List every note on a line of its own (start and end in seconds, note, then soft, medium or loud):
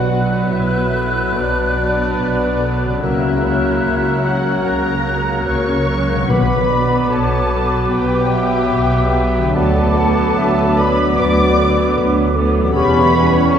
0.00 0.42 B1 soft
0.00 0.41 B2 soft
0.00 0.90 B2 medium
0.00 2.97 B2 soft
0.00 2.98 F#3 soft
0.00 2.98 B3 soft
0.00 3.06 B3 soft
0.00 2.99 D4 soft
0.00 0.52 F#4 soft
0.00 2.93 F#4 soft
0.00 2.99 B4 soft
0.00 3.04 B4 soft
0.00 0.54 D5 soft
0.00 0.52 F#5 soft
0.00 2.98 F#6 soft
0.09 0.92 F#3 soft
0.09 0.92 B3 soft
0.51 1.25 B1 soft
0.51 1.25 B2 soft
0.51 1.35 E4 soft
0.51 0.96 B4 soft
0.51 1.33 E5 soft
0.93 1.75 F#3 soft
0.93 1.75 B3 soft
0.93 1.37 A4 soft
1.34 2.09 B1 soft
1.34 2.09 B2 soft
1.34 3.03 D4 soft
1.34 1.76 B4 soft
1.34 3.02 D5 medium
1.76 2.59 F#3 soft
1.76 2.59 B3 soft
1.76 2.20 D5 soft
2.18 2.92 B1 soft
2.18 2.92 B2 soft
2.18 2.62 B4 soft
2.61 3.01 F#3 soft
2.61 3.01 B3 soft
2.61 3.04 A4 soft
2.85 6.24 C#3 soft
2.89 6.26 C#4 soft
2.94 6.19 F#4 soft
2.98 3.75 C#3 soft
2.98 5.98 F#3 soft
2.98 3.42 A#3 soft
2.98 6.25 A#3 soft
2.98 6.31 A#4 soft
2.98 6.25 F#6 soft
3.02 3.75 C#2 soft
3.02 6.26 F#3 soft
3.02 3.42 F#3 soft
3.02 4.24 E4 soft
3.02 5.99 A#4 soft
3.02 3.45 A#4 soft
3.02 4.23 E5 medium
3.43 4.24 F#3 soft
3.43 4.24 A#3 soft
3.43 5.49 C#5 medium
3.84 4.56 C#2 soft
3.84 4.56 C#3 soft
4.25 5.05 F#3 soft
4.25 5.05 A#3 soft
4.25 4.66 F#4 medium
4.25 4.66 F#5 medium
4.65 5.38 C#2 soft
4.65 5.37 C#3 soft
4.65 5.47 A#4 medium
4.65 5.48 A#5 medium
5.07 5.87 F#3 soft
5.07 5.87 A#3 soft
5.46 6.20 C#2 soft
5.46 6.19 C#3 medium
5.46 5.87 A#4 soft
5.46 6.30 C#5 soft
5.46 6.28 C#6 medium
5.87 6.29 F#3 soft
5.87 6.29 A#3 soft
5.87 6.31 A#4 soft
6.12 9.50 B2 soft
6.16 9.41 D4 soft
6.21 9.46 F#4 soft
6.25 7.01 B1 soft
6.25 7.47 B2 medium
6.25 7.01 B2 medium
6.25 9.39 F#3 soft
6.25 9.39 B3 soft
6.25 9.50 B4 soft
6.25 9.52 B4 soft
6.25 7.11 B5 medium
6.25 9.28 D6 soft
6.30 9.52 F#3 soft
6.30 6.72 B4 medium
6.30 7.10 B4 medium
6.70 7.50 F#3 soft
6.70 7.50 B3 soft
6.70 7.12 D5 medium
7.10 7.82 B1 soft
7.10 7.82 B2 soft
7.10 7.90 A4 medium
7.10 7.65 C#5 soft
7.10 7.92 A5 medium
7.52 8.31 F#3 soft
7.52 8.31 B3 soft
7.91 8.64 B1 medium
7.91 8.64 B2 medium
7.91 9.56 G4 medium
7.91 8.34 B4 medium
7.91 9.56 G5 medium
8.32 9.14 F#3 soft
8.32 9.14 B3 soft
8.32 9.57 E5 medium
8.73 9.46 B1 medium
8.73 9.46 B2 medium
9.15 9.55 F#3 soft
9.15 9.55 B3 soft
9.38 12.70 D3 soft
9.43 12.72 D4 soft
9.47 12.74 F#4 soft
9.52 10.28 D2 medium
9.52 12.77 B4 soft
9.52 12.72 D6 medium
9.56 12.72 F#3 medium
9.56 9.96 F#3 soft
9.56 12.46 F#3 medium
9.56 9.97 B3 soft
9.56 12.72 B3 medium
9.56 10.77 A4 medium
9.56 12.45 B4 soft
9.56 9.98 D5 medium
9.56 10.76 A5 medium
9.97 10.77 F#3 medium
9.97 10.78 B3 medium
9.97 10.40 F#5 medium
10.38 11.09 D2 medium
10.38 10.81 E5 medium
10.78 11.57 F#3 soft
10.78 11.57 B3 soft
10.78 11.19 B4 medium
10.78 11.21 D5 medium
10.78 11.19 B5 medium
11.19 11.88 D2 medium
11.19 11.58 B4 medium
11.19 11.95 D5 medium
11.19 11.97 D6 medium
11.58 12.35 F#3 soft
11.58 12.35 B3 medium
11.58 11.99 A4 soft
11.96 12.66 D2 medium
11.96 12.67 D2 medium
11.96 12.38 B4 medium
12.36 12.75 F#3 medium
12.36 12.75 B3 medium
12.36 12.75 A4 medium
12.59 13.59 E2 soft
12.63 13.59 C#4 soft
12.68 13.59 G4 soft
12.72 13.42 E2 medium
12.72 13.59 G3 medium
12.72 13.59 C#4 medium
12.72 13.59 C#5 soft
12.72 13.51 B5 medium
12.72 13.59 C#6 medium
12.76 13.42 E1 medium
12.76 12.95 C#3 medium
12.76 13.59 G3 medium
12.76 13.59 C#4 medium
12.76 13.17 G4 medium
12.76 13.52 B4 medium
12.76 13.59 C#5 medium
12.97 13.16 E3 soft
13.15 13.36 G3 medium
13.15 13.56 B4 medium
13.36 13.56 E3 medium
13.55 13.59 C#3 soft
13.55 13.59 A4 medium
13.55 13.59 C#5 medium
13.55 13.59 A5 medium